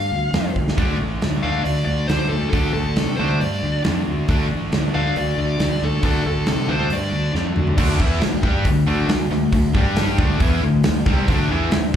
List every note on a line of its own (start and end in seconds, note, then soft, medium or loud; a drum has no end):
0.00 0.11 G2 medium
0.00 0.52 F5 medium
0.12 0.33 D2 medium
0.33 0.54 F2 medium
0.33 snare loud
0.33 open hi-hat medium
0.55 0.76 D2 medium
0.55 kick medium
0.68 snare medium
0.77 0.98 D2 medium
0.77 1.46 D3 medium
0.77 1.45 A3 medium
0.77 1.43 D4 medium
0.77 kick loud
0.77 open hi-hat medium
1.00 1.20 A1 medium
1.22 1.42 D2 medium
1.22 snare loud
1.22 open hi-hat soft
1.43 1.64 D2 medium
1.43 2.09 D3 medium
1.43 2.10 A3 medium
1.43 2.11 D4 medium
1.43 1.64 F5 loud
1.64 1.86 D2 medium
1.64 1.84 D5 medium
1.64 open hi-hat medium
1.85 2.08 D2 medium
1.85 2.06 D5 medium
2.07 2.30 D2 medium
2.07 2.52 D3 medium
2.07 2.53 A3 medium
2.07 2.28 C5 medium
2.07 snare loud
2.07 open hi-hat medium
2.12 2.55 D4 medium
2.29 2.52 D2 medium
2.29 2.48 A4 medium
2.50 2.73 D2 loud
2.50 3.21 D3 medium
2.50 2.72 A4 medium
2.50 kick loud
2.50 open hi-hat medium
2.54 3.20 A3 loud
2.54 3.19 D4 loud
2.73 2.96 D2 medium
2.73 3.16 A4 medium
2.96 3.18 C3 medium
2.96 snare loud
2.96 open hi-hat medium
3.17 3.40 D2 medium
3.17 3.88 D4 medium
3.17 3.40 C5 medium
3.21 3.85 D3 medium
3.21 3.87 A3 medium
3.40 3.61 G2 medium
3.40 3.81 D5 medium
3.40 open hi-hat medium
3.63 3.83 D2 medium
3.84 4.05 F2 loud
3.84 4.29 D3 medium
3.84 4.30 A3 medium
3.84 4.31 D4 medium
3.84 snare loud
3.84 open hi-hat medium
4.07 4.27 D2 medium
4.28 4.49 D2 medium
4.28 4.96 D3 medium
4.28 4.96 A3 medium
4.28 4.94 D4 loud
4.28 kick loud
4.28 open hi-hat medium
4.51 4.71 A1 medium
4.72 4.93 D2 medium
4.72 snare loud
4.72 open hi-hat medium
4.94 5.15 D2 medium
4.94 5.59 D3 medium
4.94 5.60 A3 medium
4.94 5.61 D4 medium
4.94 5.15 F5 loud
5.16 5.37 D2 medium
5.16 5.38 D5 medium
5.16 open hi-hat medium
5.38 5.58 D2 medium
5.38 5.84 D5 loud
5.59 5.80 D2 medium
5.59 6.01 D3 medium
5.59 6.03 A3 medium
5.59 6.04 D4 medium
5.59 snare loud
5.59 open hi-hat medium
5.82 6.02 D2 medium
5.82 6.04 A4 medium
6.01 6.24 D2 loud
6.01 6.67 D3 medium
6.01 6.68 A3 loud
6.01 6.67 D4 loud
6.01 6.26 A4 medium
6.01 kick loud
6.01 open hi-hat medium
6.26 6.46 D2 medium
6.26 6.47 A4 medium
6.46 6.68 C3 medium
6.46 6.71 A4 medium
6.46 snare loud
6.46 open hi-hat medium
6.68 6.89 D2 medium
6.68 7.32 D3 medium
6.68 7.33 A3 medium
6.68 7.33 D4 medium
6.68 6.91 C5 medium
6.90 7.11 G2 medium
6.90 7.33 D5 medium
6.90 open hi-hat medium
7.12 7.33 D2 medium
7.33 7.55 F2 medium
7.33 7.77 D3 medium
7.33 7.77 A3 medium
7.33 7.78 D4 medium
7.33 snare medium
7.56 7.77 D2 medium
7.56 mid tom medium
7.67 floor tom medium
7.78 7.98 D2 loud
7.78 7.99 D3 medium
7.78 8.00 A3 medium
7.78 8.00 D4 medium
7.78 kick loud
7.78 crash loud
8.00 8.20 E2 loud
8.00 8.21 E3 loud
8.00 8.21 B3 loud
8.00 8.22 E4 loud
8.00 kick loud
8.21 8.42 D2 medium
8.21 8.40 D3 medium
8.21 8.40 A3 medium
8.21 snare loud
8.21 open hi-hat medium
8.43 8.64 G2 medium
8.43 8.65 G3 medium
8.43 8.65 D4 medium
8.43 8.66 G4 medium
8.43 kick loud
8.65 8.86 D2 medium
8.65 8.84 D3 medium
8.65 8.84 A3 medium
8.65 kick loud
8.65 open hi-hat medium
8.87 9.08 D2 loud
8.87 9.07 D3 loud
8.87 9.07 A3 loud
8.87 9.09 D4 loud
9.08 9.29 D2 medium
9.08 9.27 D3 medium
9.08 9.27 A3 medium
9.08 snare loud
9.08 open hi-hat medium
9.31 9.52 D2 medium
9.31 9.49 D3 medium
9.31 9.49 A3 medium
9.31 snare soft
9.52 9.73 D2 medium
9.52 9.70 D3 medium
9.52 9.70 A3 medium
9.52 kick loud
9.52 open hi-hat medium
9.74 10.16 G2 loud
9.74 10.18 G3 medium
9.74 10.18 D4 loud
9.74 10.18 G4 loud
9.74 kick loud
9.96 snare loud
9.96 open hi-hat medium
10.18 10.39 D2 medium
10.18 10.39 D3 medium
10.18 10.40 A3 medium
10.18 10.40 D4 medium
10.18 kick loud
10.39 10.61 E2 medium
10.39 10.62 E3 loud
10.39 10.62 B3 loud
10.39 10.62 E4 loud
10.39 kick loud
10.39 open hi-hat medium
10.63 10.84 D2 medium
10.63 10.81 D3 medium
10.63 10.81 A3 medium
10.84 11.05 D2 medium
10.84 11.02 D3 medium
10.84 11.02 A3 medium
10.84 snare loud
10.84 open hi-hat medium
11.06 11.27 C2 loud
11.06 11.27 C3 medium
11.06 11.27 G3 loud
11.06 11.28 C4 loud
11.06 kick loud
11.06 snare soft
11.27 11.49 D2 loud
11.27 11.49 D3 loud
11.27 11.49 A3 medium
11.27 11.50 D4 loud
11.27 kick loud
11.27 open hi-hat medium
11.49 11.71 E2 loud
11.49 11.71 E3 loud
11.49 11.72 B3 loud
11.49 11.72 E4 loud
11.71 11.93 D2 medium
11.71 11.90 D3 medium
11.71 11.90 A3 medium
11.71 snare loud
11.71 open hi-hat medium